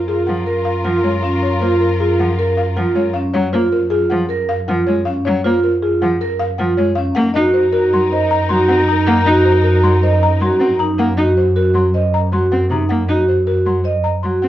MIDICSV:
0, 0, Header, 1, 7, 480
1, 0, Start_track
1, 0, Tempo, 382166
1, 1794, Time_signature, 5, 2, 24, 8
1, 18191, End_track
2, 0, Start_track
2, 0, Title_t, "Marimba"
2, 0, Program_c, 0, 12
2, 0, Note_on_c, 0, 70, 57
2, 101, Note_on_c, 0, 68, 69
2, 184, Note_off_c, 0, 70, 0
2, 334, Note_on_c, 0, 78, 59
2, 422, Note_off_c, 0, 68, 0
2, 580, Note_on_c, 0, 70, 56
2, 659, Note_off_c, 0, 78, 0
2, 816, Note_on_c, 0, 77, 77
2, 901, Note_off_c, 0, 70, 0
2, 1061, Note_on_c, 0, 78, 57
2, 1140, Note_off_c, 0, 77, 0
2, 1306, Note_on_c, 0, 73, 62
2, 1381, Note_off_c, 0, 78, 0
2, 1540, Note_on_c, 0, 77, 75
2, 1623, Note_off_c, 0, 73, 0
2, 1792, Note_on_c, 0, 73, 72
2, 1861, Note_off_c, 0, 77, 0
2, 2031, Note_on_c, 0, 72, 65
2, 2105, Note_off_c, 0, 73, 0
2, 2266, Note_on_c, 0, 70, 63
2, 2345, Note_off_c, 0, 72, 0
2, 2511, Note_on_c, 0, 68, 72
2, 2583, Note_off_c, 0, 70, 0
2, 2757, Note_on_c, 0, 78, 65
2, 2825, Note_off_c, 0, 68, 0
2, 2997, Note_on_c, 0, 70, 65
2, 3067, Note_off_c, 0, 78, 0
2, 3228, Note_on_c, 0, 77, 81
2, 3307, Note_off_c, 0, 70, 0
2, 3470, Note_on_c, 0, 78, 63
2, 3544, Note_off_c, 0, 77, 0
2, 3711, Note_on_c, 0, 73, 66
2, 3785, Note_off_c, 0, 78, 0
2, 3935, Note_on_c, 0, 77, 80
2, 4025, Note_off_c, 0, 73, 0
2, 4187, Note_on_c, 0, 73, 85
2, 4260, Note_off_c, 0, 77, 0
2, 4431, Note_on_c, 0, 72, 70
2, 4504, Note_off_c, 0, 73, 0
2, 4675, Note_on_c, 0, 70, 68
2, 4745, Note_off_c, 0, 72, 0
2, 4901, Note_on_c, 0, 68, 84
2, 4986, Note_off_c, 0, 70, 0
2, 5145, Note_on_c, 0, 78, 67
2, 5222, Note_off_c, 0, 68, 0
2, 5385, Note_on_c, 0, 70, 67
2, 5463, Note_off_c, 0, 78, 0
2, 5638, Note_on_c, 0, 77, 90
2, 5703, Note_off_c, 0, 70, 0
2, 5879, Note_on_c, 0, 78, 74
2, 5948, Note_off_c, 0, 77, 0
2, 6112, Note_on_c, 0, 73, 69
2, 6188, Note_off_c, 0, 78, 0
2, 6346, Note_on_c, 0, 77, 84
2, 6425, Note_off_c, 0, 73, 0
2, 6595, Note_on_c, 0, 73, 89
2, 6663, Note_off_c, 0, 77, 0
2, 6840, Note_on_c, 0, 72, 77
2, 6906, Note_off_c, 0, 73, 0
2, 7080, Note_on_c, 0, 70, 71
2, 7148, Note_off_c, 0, 72, 0
2, 7319, Note_on_c, 0, 68, 84
2, 7388, Note_off_c, 0, 70, 0
2, 7561, Note_on_c, 0, 78, 80
2, 7628, Note_off_c, 0, 68, 0
2, 7800, Note_on_c, 0, 70, 74
2, 7869, Note_off_c, 0, 78, 0
2, 8032, Note_on_c, 0, 77, 95
2, 8108, Note_off_c, 0, 70, 0
2, 8270, Note_on_c, 0, 78, 75
2, 8345, Note_off_c, 0, 77, 0
2, 8510, Note_on_c, 0, 73, 76
2, 8585, Note_off_c, 0, 78, 0
2, 8738, Note_on_c, 0, 77, 96
2, 8825, Note_off_c, 0, 73, 0
2, 8981, Note_on_c, 0, 78, 91
2, 9060, Note_off_c, 0, 77, 0
2, 9218, Note_on_c, 0, 75, 81
2, 9302, Note_off_c, 0, 78, 0
2, 9466, Note_on_c, 0, 72, 72
2, 9540, Note_off_c, 0, 75, 0
2, 9703, Note_on_c, 0, 70, 89
2, 9783, Note_off_c, 0, 72, 0
2, 9964, Note_on_c, 0, 84, 79
2, 10022, Note_off_c, 0, 70, 0
2, 10206, Note_on_c, 0, 72, 74
2, 10270, Note_off_c, 0, 84, 0
2, 10436, Note_on_c, 0, 82, 97
2, 10510, Note_off_c, 0, 72, 0
2, 10665, Note_on_c, 0, 84, 75
2, 10747, Note_off_c, 0, 82, 0
2, 10906, Note_on_c, 0, 78, 77
2, 10983, Note_off_c, 0, 84, 0
2, 11160, Note_on_c, 0, 82, 90
2, 11223, Note_off_c, 0, 78, 0
2, 11392, Note_on_c, 0, 78, 91
2, 11468, Note_off_c, 0, 82, 0
2, 11631, Note_on_c, 0, 75, 77
2, 11705, Note_off_c, 0, 78, 0
2, 11870, Note_on_c, 0, 72, 75
2, 11945, Note_off_c, 0, 75, 0
2, 12106, Note_on_c, 0, 70, 85
2, 12185, Note_off_c, 0, 72, 0
2, 12351, Note_on_c, 0, 84, 77
2, 12423, Note_off_c, 0, 70, 0
2, 12597, Note_on_c, 0, 72, 73
2, 12665, Note_off_c, 0, 84, 0
2, 12844, Note_on_c, 0, 82, 95
2, 12907, Note_off_c, 0, 72, 0
2, 13079, Note_on_c, 0, 84, 71
2, 13150, Note_off_c, 0, 82, 0
2, 13323, Note_on_c, 0, 78, 67
2, 13388, Note_off_c, 0, 84, 0
2, 13554, Note_on_c, 0, 82, 83
2, 13629, Note_off_c, 0, 78, 0
2, 13808, Note_on_c, 0, 78, 90
2, 13866, Note_off_c, 0, 82, 0
2, 14042, Note_on_c, 0, 75, 68
2, 14111, Note_off_c, 0, 78, 0
2, 14282, Note_on_c, 0, 72, 64
2, 14349, Note_off_c, 0, 75, 0
2, 14522, Note_on_c, 0, 70, 76
2, 14589, Note_off_c, 0, 72, 0
2, 14759, Note_on_c, 0, 84, 66
2, 14829, Note_off_c, 0, 70, 0
2, 15004, Note_on_c, 0, 72, 65
2, 15068, Note_off_c, 0, 84, 0
2, 15247, Note_on_c, 0, 82, 79
2, 15310, Note_off_c, 0, 72, 0
2, 15486, Note_on_c, 0, 84, 64
2, 15551, Note_off_c, 0, 82, 0
2, 15720, Note_on_c, 0, 78, 62
2, 15790, Note_off_c, 0, 84, 0
2, 15967, Note_on_c, 0, 82, 69
2, 16028, Note_off_c, 0, 78, 0
2, 16191, Note_on_c, 0, 78, 68
2, 16271, Note_off_c, 0, 82, 0
2, 16439, Note_on_c, 0, 75, 64
2, 16505, Note_off_c, 0, 78, 0
2, 16684, Note_on_c, 0, 72, 58
2, 16748, Note_off_c, 0, 75, 0
2, 16918, Note_on_c, 0, 70, 73
2, 16990, Note_off_c, 0, 72, 0
2, 17162, Note_on_c, 0, 84, 56
2, 17228, Note_off_c, 0, 70, 0
2, 17384, Note_on_c, 0, 72, 58
2, 17469, Note_off_c, 0, 84, 0
2, 17632, Note_on_c, 0, 82, 75
2, 17703, Note_off_c, 0, 72, 0
2, 17869, Note_on_c, 0, 84, 57
2, 17945, Note_off_c, 0, 82, 0
2, 18109, Note_on_c, 0, 78, 60
2, 18184, Note_off_c, 0, 84, 0
2, 18191, Note_off_c, 0, 78, 0
2, 18191, End_track
3, 0, Start_track
3, 0, Title_t, "String section"
3, 0, Program_c, 1, 48
3, 0, Note_on_c, 1, 65, 64
3, 0, Note_on_c, 1, 70, 64
3, 3904, Note_off_c, 1, 65, 0
3, 3905, Note_off_c, 1, 70, 0
3, 8983, Note_on_c, 1, 70, 83
3, 8984, Note_on_c, 1, 63, 78
3, 13498, Note_off_c, 1, 70, 0
3, 13499, Note_off_c, 1, 63, 0
3, 18191, End_track
4, 0, Start_track
4, 0, Title_t, "Vibraphone"
4, 0, Program_c, 2, 11
4, 109, Note_on_c, 2, 65, 52
4, 425, Note_off_c, 2, 65, 0
4, 589, Note_on_c, 2, 70, 67
4, 904, Note_off_c, 2, 70, 0
4, 1071, Note_on_c, 2, 65, 58
4, 1385, Note_off_c, 2, 65, 0
4, 1550, Note_on_c, 2, 61, 64
4, 1865, Note_off_c, 2, 61, 0
4, 2030, Note_on_c, 2, 65, 70
4, 2345, Note_off_c, 2, 65, 0
4, 2516, Note_on_c, 2, 65, 58
4, 2827, Note_off_c, 2, 65, 0
4, 2994, Note_on_c, 2, 70, 75
4, 3306, Note_off_c, 2, 70, 0
4, 3476, Note_on_c, 2, 65, 68
4, 3787, Note_off_c, 2, 65, 0
4, 3961, Note_on_c, 2, 61, 68
4, 4268, Note_off_c, 2, 61, 0
4, 4432, Note_on_c, 2, 65, 75
4, 4745, Note_off_c, 2, 65, 0
4, 4915, Note_on_c, 2, 65, 65
4, 5226, Note_off_c, 2, 65, 0
4, 5401, Note_on_c, 2, 70, 85
4, 5709, Note_off_c, 2, 70, 0
4, 5885, Note_on_c, 2, 65, 74
4, 6190, Note_off_c, 2, 65, 0
4, 6364, Note_on_c, 2, 61, 72
4, 6670, Note_off_c, 2, 61, 0
4, 6840, Note_on_c, 2, 65, 84
4, 7148, Note_off_c, 2, 65, 0
4, 7322, Note_on_c, 2, 65, 68
4, 7629, Note_off_c, 2, 65, 0
4, 7805, Note_on_c, 2, 70, 92
4, 8110, Note_off_c, 2, 70, 0
4, 8287, Note_on_c, 2, 65, 75
4, 8591, Note_off_c, 2, 65, 0
4, 8766, Note_on_c, 2, 61, 75
4, 9070, Note_off_c, 2, 61, 0
4, 9242, Note_on_c, 2, 66, 83
4, 9549, Note_off_c, 2, 66, 0
4, 9718, Note_on_c, 2, 66, 73
4, 10028, Note_off_c, 2, 66, 0
4, 10199, Note_on_c, 2, 75, 90
4, 10508, Note_off_c, 2, 75, 0
4, 10677, Note_on_c, 2, 66, 77
4, 10987, Note_off_c, 2, 66, 0
4, 11157, Note_on_c, 2, 63, 76
4, 11467, Note_off_c, 2, 63, 0
4, 11644, Note_on_c, 2, 66, 83
4, 11950, Note_off_c, 2, 66, 0
4, 12128, Note_on_c, 2, 66, 68
4, 12431, Note_off_c, 2, 66, 0
4, 12599, Note_on_c, 2, 75, 92
4, 12908, Note_off_c, 2, 75, 0
4, 13084, Note_on_c, 2, 66, 72
4, 13390, Note_off_c, 2, 66, 0
4, 13564, Note_on_c, 2, 63, 75
4, 13870, Note_off_c, 2, 63, 0
4, 14038, Note_on_c, 2, 66, 77
4, 14348, Note_off_c, 2, 66, 0
4, 14516, Note_on_c, 2, 66, 63
4, 14827, Note_off_c, 2, 66, 0
4, 14998, Note_on_c, 2, 75, 76
4, 15307, Note_off_c, 2, 75, 0
4, 15481, Note_on_c, 2, 66, 65
4, 15789, Note_off_c, 2, 66, 0
4, 15960, Note_on_c, 2, 63, 64
4, 16268, Note_off_c, 2, 63, 0
4, 16439, Note_on_c, 2, 66, 65
4, 16748, Note_off_c, 2, 66, 0
4, 16920, Note_on_c, 2, 66, 54
4, 17228, Note_off_c, 2, 66, 0
4, 17397, Note_on_c, 2, 75, 73
4, 17707, Note_off_c, 2, 75, 0
4, 17880, Note_on_c, 2, 66, 61
4, 18188, Note_off_c, 2, 66, 0
4, 18191, End_track
5, 0, Start_track
5, 0, Title_t, "Clarinet"
5, 0, Program_c, 3, 71
5, 0, Note_on_c, 3, 65, 64
5, 3901, Note_off_c, 3, 65, 0
5, 8995, Note_on_c, 3, 63, 81
5, 13504, Note_off_c, 3, 63, 0
5, 18191, End_track
6, 0, Start_track
6, 0, Title_t, "Cello"
6, 0, Program_c, 4, 42
6, 354, Note_on_c, 4, 53, 57
6, 534, Note_off_c, 4, 53, 0
6, 1063, Note_on_c, 4, 53, 61
6, 1247, Note_off_c, 4, 53, 0
6, 1298, Note_on_c, 4, 56, 55
6, 1484, Note_off_c, 4, 56, 0
6, 2021, Note_on_c, 4, 58, 61
6, 2206, Note_off_c, 4, 58, 0
6, 2750, Note_on_c, 4, 53, 60
6, 2932, Note_off_c, 4, 53, 0
6, 3472, Note_on_c, 4, 53, 66
6, 3653, Note_off_c, 4, 53, 0
6, 3699, Note_on_c, 4, 56, 61
6, 3884, Note_off_c, 4, 56, 0
6, 4192, Note_on_c, 4, 54, 85
6, 4373, Note_off_c, 4, 54, 0
6, 4438, Note_on_c, 4, 58, 70
6, 4617, Note_off_c, 4, 58, 0
6, 5163, Note_on_c, 4, 53, 70
6, 5340, Note_off_c, 4, 53, 0
6, 5881, Note_on_c, 4, 53, 70
6, 6058, Note_off_c, 4, 53, 0
6, 6125, Note_on_c, 4, 56, 68
6, 6301, Note_off_c, 4, 56, 0
6, 6616, Note_on_c, 4, 54, 90
6, 6788, Note_off_c, 4, 54, 0
6, 6852, Note_on_c, 4, 58, 77
6, 7025, Note_off_c, 4, 58, 0
6, 7564, Note_on_c, 4, 53, 73
6, 7740, Note_off_c, 4, 53, 0
6, 8280, Note_on_c, 4, 53, 76
6, 8458, Note_off_c, 4, 53, 0
6, 8516, Note_on_c, 4, 56, 77
6, 8696, Note_off_c, 4, 56, 0
6, 8995, Note_on_c, 4, 58, 95
6, 9175, Note_off_c, 4, 58, 0
6, 9235, Note_on_c, 4, 63, 75
6, 9415, Note_off_c, 4, 63, 0
6, 9957, Note_on_c, 4, 54, 71
6, 10136, Note_off_c, 4, 54, 0
6, 10674, Note_on_c, 4, 54, 72
6, 10854, Note_off_c, 4, 54, 0
6, 10909, Note_on_c, 4, 60, 71
6, 11091, Note_off_c, 4, 60, 0
6, 11388, Note_on_c, 4, 58, 95
6, 11570, Note_off_c, 4, 58, 0
6, 11633, Note_on_c, 4, 63, 75
6, 11813, Note_off_c, 4, 63, 0
6, 12353, Note_on_c, 4, 54, 70
6, 12533, Note_off_c, 4, 54, 0
6, 13065, Note_on_c, 4, 54, 69
6, 13249, Note_off_c, 4, 54, 0
6, 13309, Note_on_c, 4, 60, 69
6, 13491, Note_off_c, 4, 60, 0
6, 13797, Note_on_c, 4, 58, 87
6, 13976, Note_off_c, 4, 58, 0
6, 14032, Note_on_c, 4, 63, 67
6, 14213, Note_off_c, 4, 63, 0
6, 14746, Note_on_c, 4, 54, 68
6, 14929, Note_off_c, 4, 54, 0
6, 15478, Note_on_c, 4, 54, 64
6, 15656, Note_off_c, 4, 54, 0
6, 15722, Note_on_c, 4, 60, 63
6, 15899, Note_off_c, 4, 60, 0
6, 15950, Note_on_c, 4, 48, 79
6, 16131, Note_off_c, 4, 48, 0
6, 16197, Note_on_c, 4, 58, 74
6, 16376, Note_off_c, 4, 58, 0
6, 16435, Note_on_c, 4, 63, 62
6, 16615, Note_off_c, 4, 63, 0
6, 17159, Note_on_c, 4, 54, 62
6, 17337, Note_off_c, 4, 54, 0
6, 17890, Note_on_c, 4, 54, 58
6, 18064, Note_off_c, 4, 54, 0
6, 18126, Note_on_c, 4, 60, 58
6, 18191, Note_off_c, 4, 60, 0
6, 18191, End_track
7, 0, Start_track
7, 0, Title_t, "Double bass section"
7, 0, Program_c, 5, 48
7, 0, Note_on_c, 5, 42, 60
7, 8844, Note_off_c, 5, 42, 0
7, 8989, Note_on_c, 5, 42, 76
7, 18191, Note_off_c, 5, 42, 0
7, 18191, End_track
0, 0, End_of_file